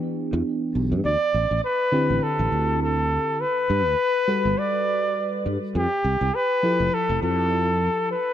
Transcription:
Already playing: E3 B3 D4 G4
0.33 E2
0.75 B1
0.92 G2
1.05 D2 D5
1.34 A1
1.51 A1
1.64 B4
1.92 D3 C4 E4 G4
2.10 A1
2.23 A4
2.39 A1
2.52 D2
2.82 A4
3.41 B4
3.70 G2
3.86 D2
4.28 G3 F#4 A4 B4
4.45 G1
4.58 D5
5.46 G2
5.75 F2 G4
6.04 C2
6.21 C2
6.35 B4
6.63 F3 E4 G4 A4
6.80 F1
6.94 A4
7.09 F1
7.22 F2 A4
8.11 B4

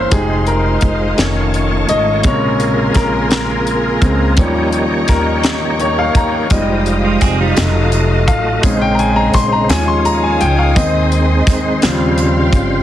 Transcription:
Already playing: E3 A#3 C#4 E4 C5 E5 F5 C6
0.11 F1 G3 G#3 D#4 F4 G4 G#4 C5 D#5 F5, kick, closed hi-hat
0.20 G#3
0.47 A#4, closed hi-hat
0.81 F1, kick, closed hi-hat
1.18 F1 D#3 A3 C#4 D#4 F4 C#5 A5 C#6, snare, closed hi-hat
1.54 closed hi-hat
1.89 G#1 D#5, closed hi-hat
2.23 A#1 C3 C#3 G#3 A#3 F4 G#4 A#4 C#5 G#5 A#5 C6, kick, closed hi-hat
2.60 closed hi-hat
2.94 A#1 A#4, kick, snare, closed hi-hat
3.31 A#4, snare, closed hi-hat
3.67 closed hi-hat
4.02 C#2 C#3 G#3 C4, kick, closed hi-hat
4.37 D#2 F3 G3 A#3 C#4 D#4 G4 C#5 D#5 G5 C#6, kick, closed hi-hat
4.73 closed hi-hat
5.08 D#2 A#4, kick, snare, closed hi-hat
5.44 snare, closed hi-hat
5.80 C#5, closed hi-hat
5.99 F5
6.15 D#2 A#5, kick, closed hi-hat
6.50 F1 F3 G3 G#3 D#4 F4 G4 D#5 F5 D#6, kick, closed hi-hat, tambourine
6.86 closed hi-hat
7.04 G#3 F4
7.21 F1 C4 G#4, kick, snare, closed hi-hat, tambourine
7.41 G3 D#4
7.57 F1 F#3 A3 D#4 F4 F#4 D#5 A5, snare, closed hi-hat, tambourine
7.92 closed hi-hat, tambourine
8.28 A1 F5, kick, closed hi-hat
8.63 A#1 C#3 G#3 C4 C#4 D#4 C5 D#5 G#5 C6, kick, closed hi-hat, tambourine
8.82 G5
8.95 A#5
8.99 G#5, closed hi-hat
9.16 A#5
9.34 A#1 C6, kick, snare, closed hi-hat, tambourine
9.53 A#5
9.69 D#2 F3 G3 G#3 C#4 D#4 F4 C#5 F5 G#5 D#6, snare, closed hi-hat, tambourine
9.77 G#3
9.88 C6
10.05 A#5, closed hi-hat, tambourine
10.24 G#5
10.41 C#2 G5, closed hi-hat
10.59 F5
10.75 D#2 D#3 G#3 C4 D#4 C5 D#5 C6, kick, closed hi-hat, tambourine
11.12 closed hi-hat
11.47 D#2, kick, snare, closed hi-hat, tambourine
11.82 D#2 C#3 F3 F#3 G3 C4 F4 C5 F5 G5, snare, closed hi-hat, tambourine
11.90 G3
12.18 closed hi-hat, tambourine
12.53 G1, kick, closed hi-hat

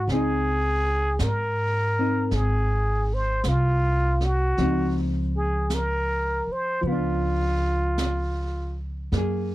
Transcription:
Already playing: C#4 D#4
0.07 C#2 G#4, brush sweep, snare
0.12 C4 D#4
1.19 G#2 A#4, brush sweep, snare, hi-hat pedal
1.99 C4 D#4
2.31 G#1 G#4, brush sweep, snare
3.14 C5
3.44 C2, brush sweep, snare, hi-hat pedal
3.48 F4
4.20 snare
4.25 F#4
4.57 C#2 F3 C4, brush sweep, snare
4.63 D#4
5.37 G#4
5.70 brush sweep, snare, hi-hat pedal
5.74 A#4
6.47 muted upright bass stroke
6.52 C5
6.81 C#2 F3, brush sweep
6.87 B3 F4
6.92 D4
7.98 brush sweep, snare, hi-hat pedal
9.12 F#2 A#3, brush sweep, snare
9.17 G#4

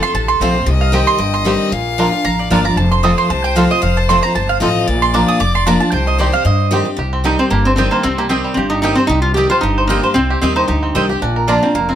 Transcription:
Already playing: F2 A4
0.02 C4 F4 C6
0.14 A1 C3 A5
0.28 C6
0.40 A#1 F3 A3 C4 F4 A4 C5
0.54 C4 F4
0.66 C2 C3 D#5
0.81 F5
0.92 D#3 G3 C4 G4 G5
1.07 C6
1.18 G1 G2 G5
1.34 C6
1.45 D#3 G3 C4 G4
1.72 A#1 A#2 F5
1.98 F3 A#3 D4 F4 A#4
2.12 D4 F4
2.24 A1 F2 A#5
2.39 D5
2.50 G1 F3 A#3 D4 F4 A#4 D5 F5
2.64 D4 F4 A#5
2.76 F1 F2 C5 A5
2.92 C6
3.03 F3 A3 C4 F4 A4 D#6
3.18 C6
3.30 C2 C3 A5
3.44 G5
3.56 F3 A3 C4 F4 A4 F5
3.70 C4 F4 D#5
3.82 F1 F2 F5
3.97 A5
4.09 F3 A3 C4 F4 A4 C6
4.23 C4 F4 A#5
4.35 G1 C3 A5
4.49 F5
4.60 A1 F3 A3 C4 F4 A4 D#5
4.87 A#1 A#2 D5
5.02 C6
5.14 F3 A#3 D4 F4 A#4 D6
5.28 D#6
5.40 F1 F2 D6
5.55 C6
5.67 F3 A#3 D4 F4 A#4 A#5
5.80 D4 F4 A5
5.92 C2 C3 C5 G5
6.07 D#5
6.18 D#3 G3 C4 G4 D5
6.32 C4 G4 F5
6.45 G2 D#5
6.71 D#3 G3 C4 G4
6.85 C4 G4
6.97 C2 C3 G4
7.13 C4
7.24 D#3 G3 C4 D#4 G4 D#5 G5
7.39 C4 C5
7.50 G1 G2 A#3 G4
7.65 C4 C5
7.76 D#3 G3 C4 G4 D#5 G5
7.91 A#3 C5
8.03 C2 C3 C4
8.18 A#3 G4
8.29 D#3 G3 C4 G4 D#5 G5
8.44 G3
8.54 G1 G2 C4 G4
8.70 D#4 G4
8.82 D#3 G3 C4 D#4 G4 D#5 G5
8.95 C4 G4 C5
8.99 C4
9.07 C2 C3 D#4 G4
9.22 F4
9.34 D#3 G3 C4 G4 D#5 G5
9.50 C4 F4 G4 C5
9.61 G1 G2 D#4 G4
9.78 C5
9.87 D#3 G3 A#3 C4 G4 D#5 G5
10.03 C4 G4 C5
10.14 C2 C3 C4
10.30 G4
10.41 D#2 D#3 G3 C4 G4 D#5 G5
10.56 D#4 C5
10.68 D2 G2 D#4 G4
10.83 C4
10.95 C2 D#3 G3 C4 G4 C5 D#5 G5
11.09 C4 G4
11.22 A#1 A#2 D4
11.36 A#4
11.48 F3 A#3 D4 F4 D5 A#5
11.63 A#3 C4 D4 F4
11.75 F1 F2 A#3 A#4
11.89 C4 F4

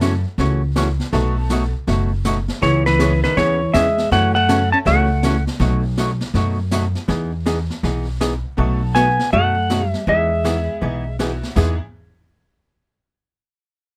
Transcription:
Already playing: F#2 A3 C#4 E4 F#4 A4
0.01 C#3 E3 A3 C#4 F#4, snare, hi-hat pedal
0.38 C#2 C#3 E3 A3 C#4 F#4, brush sweep, snare
0.76 C#3 E3 A3 C#4 F#4, snare, hi-hat pedal
1.00 snare
1.12 B1 B2 F#3 A3 B3 D#4 F#4 A4, brush sweep, snare
1.50 B2 F#3 A3 D#4 F#4, snare, hi-hat pedal
1.87 F#1 B2 F#3 A3 D#4 F#4, brush sweep, snare
2.25 B2 F#3 A3 D#4 F#4, snare, hi-hat pedal
2.48 snare
2.62 C#2 C#3 E3 B3 C#4 G#4 C#5, brush sweep, snare
2.86 E3 B4, snare
2.99 C#3 E3 G#3 B3 C#4 E4 G#4, snare, hi-hat pedal
3.23 D#3 B4, snare
3.37 D#2 C#3 E3 B3 C#4 G#4 C#5, brush sweep, snare
3.74 E2 C#3 E3 G#3 B3 C#4 G#4 E5, snare, hi-hat pedal
3.98 snare
4.11 F#2 C#3 E3 A3 C#4 F#4 F#5, brush sweep, snare
4.35 A3 F#5
4.48 C#3 E3 A3 C#4 E4 F#4 A4, snare, hi-hat pedal
4.72 C#4 A5
4.85 C#2 C#3 E3 A3 C#4 F#4 F#5, brush sweep, snare
5.23 C#3 E3 A3 C#4 F#4, snare, hi-hat pedal
5.47 snare
5.60 B1 B2 F#3 A3 D#4 F#4, brush sweep, snare
5.98 B2 F#3 A3 D#4 F#4, snare, hi-hat pedal
6.21 snare
6.34 F#2 B2 F#3 A3 D#4 F#4, brush sweep, snare
6.71 B2 F#3 A3 D#4 F#4, snare, hi-hat pedal
6.95 snare
7.08 E2 E3 B3 D#4 G#4, brush sweep, snare
7.46 E3 B3 D#4 G#4, snare, hi-hat pedal
7.70 snare
7.83 B1 E3 B3 D#4 G#4, brush sweep, snare
8.21 E3 B3 D#4 G#4, snare, hi-hat pedal
8.57 B1 B2 F#3 A3 B3 D#4 F#4 A4, brush sweep
8.95 B2 F#3 A3 B3 D#4 F#4 G#5, snare, hi-hat pedal
9.19 snare
9.33 F#2 B2 F#3 A3 D#4 F#4 F#5, brush sweep
9.70 B2 F#3 A3 D#4 F#4, snare, hi-hat pedal
9.85 G3 E5
9.94 snare
10.07 E2 E3 G#3 B3 D#4 G#4 E5, brush sweep
10.44 E3 B3 D#4 E4 G#4, snare, hi-hat pedal
10.81 B1 E3 B3 D#4 G#4, brush sweep
11.19 E3 B3 D#4 E4 F#4 G#4, snare, hi-hat pedal
11.43 snare
11.56 E2 E3 B3 D#4 E4 G#4, kick, snare, crash

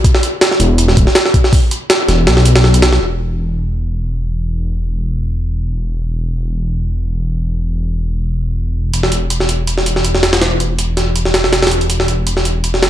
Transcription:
0.04 kick, closed hi-hat
0.15 snare
0.23 closed hi-hat
0.41 snare, closed hi-hat
0.51 snare
0.60 E1, closed hi-hat
0.78 closed hi-hat
0.88 snare
0.97 D1, kick, closed hi-hat
1.07 snare
1.15 snare, closed hi-hat
1.26 snare
1.34 kick, closed hi-hat
1.44 snare
1.53 kick, open hi-hat
1.71 closed hi-hat
1.90 snare, closed hi-hat
2.08 E1, snare, closed hi-hat
2.27 B1, snare, closed hi-hat
2.37 snare
2.45 closed hi-hat
2.56 snare, closed hi-hat
2.64 snare
2.74 closed hi-hat
2.82 snare, closed hi-hat
2.93 snare
3.01 E1
8.93 E1, closed hi-hat
9.03 snare
9.12 closed hi-hat
9.30 closed hi-hat
9.40 snare
9.49 closed hi-hat
9.67 closed hi-hat
9.78 snare
9.86 closed hi-hat
9.96 snare
10.04 closed hi-hat
10.15 snare
10.23 snare, closed hi-hat
10.33 snare, closed hi-hat
10.42 snare, closed hi-hat
10.60 closed hi-hat
10.79 closed hi-hat
10.97 snare, closed hi-hat
11.16 closed hi-hat
11.25 snare
11.34 snare, closed hi-hat
11.44 snare
11.53 snare, closed hi-hat
11.63 snare, closed hi-hat
11.67 snare, closed hi-hat
11.71 closed hi-hat
11.81 closed hi-hat
11.90 closed hi-hat
12.00 snare
12.08 closed hi-hat
12.27 closed hi-hat
12.37 snare
12.45 closed hi-hat
12.64 closed hi-hat
12.74 snare
12.83 snare, closed hi-hat

